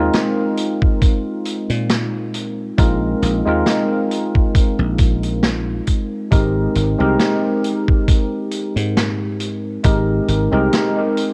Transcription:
Already playing: tine electric piano G#3 C4 D#4 F4 A#4
0.13 snare, closed hi-hat
0.57 closed hi-hat
0.82 kick
1.02 kick, closed hi-hat
1.45 closed hi-hat
1.70 slap bass A#2, closed hi-hat
1.89 snare, closed hi-hat
2.34 closed hi-hat
2.78 slap bass A#1, tine electric piano G#3 C4 D#4 F4 A#4, kick, closed hi-hat
3.22 slap bass A#1, closed hi-hat
3.46 slap bass D#2, tine electric piano G#3 C4 D#4 F4 A#4
3.66 snare, closed hi-hat
4.11 closed hi-hat
4.35 kick
4.55 kick, closed hi-hat
4.79 slap bass A#1
4.98 kick, closed hi-hat
5.23 closed hi-hat
5.43 snare, closed hi-hat
5.87 kick, closed hi-hat
6.31 slap bass G#1, tine electric piano G#3 C4 D#4 G4 A#4, kick, closed hi-hat
6.75 slap bass G#1, closed hi-hat
6.98 slap bass C2, tine electric piano G#3 C4 D#4 G4 A#4
7.19 snare, closed hi-hat
7.64 closed hi-hat
7.88 kick
8.08 kick, closed hi-hat
8.51 closed hi-hat
8.76 slap bass G#2, closed hi-hat
8.97 snare, closed hi-hat
9.40 closed hi-hat
9.84 slap bass G#1, tine electric piano G#3 C4 D#4 G4 A#4, kick, closed hi-hat
10.28 slap bass G#1, closed hi-hat
10.51 slap bass C2, tine electric piano G#3 C4 D#4 G4 A#4
10.73 snare, closed hi-hat
11.17 closed hi-hat

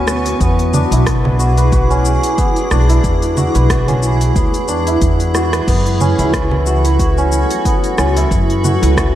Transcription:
Already playing: upright bass D2, ambient pad B3 F#4 B4, santur B3 C#4 E4 F#4 B4
0.08 cross-stick, shaker
0.26 open hi-hat, shaker
0.40 upright bass E2, santur B3, ambient pad E4 G#4 D6, kick, open hi-hat, shaker
0.59 open hi-hat
0.74 santur D4, low conga, shaker
0.91 upright bass B1, santur E4, open hi-hat, shaker
1.06 kick, cross-stick, open hi-hat, shaker
1.25 low conga
1.39 santur F#4, shaker
1.57 santur B4, open hi-hat, shaker
1.72 santur F#4, kick, open hi-hat, shaker
1.90 santur C#4, shaker
2.05 shaker
2.23 open hi-hat, shaker
2.38 santur B3, kick, open hi-hat, shaker
2.56 open hi-hat
2.71 upright bass B1, santur D4, cross-stick, shaker
2.89 santur E4, open hi-hat, shaker
3.04 upright bass E2, kick, open hi-hat, shaker
3.22 open hi-hat, shaker
3.37 santur F#4, low conga, shaker
3.55 upright bass B1, santur B4, open hi-hat, shaker
3.70 santur F#4, kick, cross-stick, open hi-hat, shaker
3.88 santur C#4, open hi-hat, low conga, shaker
4.03 shaker
4.21 open hi-hat, shaker
4.36 upright bass D2, santur B3, kick, open hi-hat, shaker
4.54 open hi-hat, shaker
4.68 upright bass E2, santur D4, shaker
4.87 santur E4, open hi-hat, shaker
5.02 upright bass E2, kick, open hi-hat, shaker
5.20 open hi-hat, shaker
5.34 santur F#4, cross-stick, shaker
5.53 santur B4, cross-stick, open hi-hat, shaker
5.67 upright bass F#2, santur B3, ambient pad F#4 A4, singing bowl B4, kick, open hi-hat, crash, shaker
5.86 open hi-hat
6.01 santur C#4, low conga, shaker
6.19 upright bass C#2, santur E4, open hi-hat, shaker
6.33 kick, cross-stick, open hi-hat, shaker
6.51 low conga
6.66 santur F#4, shaker
6.85 santur B4, open hi-hat, shaker
6.99 santur F#4, kick, open hi-hat, shaker
7.18 santur C#4, shaker
7.32 shaker
7.51 open hi-hat, shaker
7.65 santur B3, kick, open hi-hat, shaker
7.84 open hi-hat
7.98 upright bass C#2, santur C#4, cross-stick, shaker
8.16 santur E4, open hi-hat, shaker
8.31 upright bass F#2, kick, open hi-hat, shaker
8.50 open hi-hat
8.64 santur F#4, low conga, shaker
8.82 upright bass C#2, santur B4, open hi-hat, shaker
8.97 santur F#4, kick, cross-stick, open hi-hat, shaker

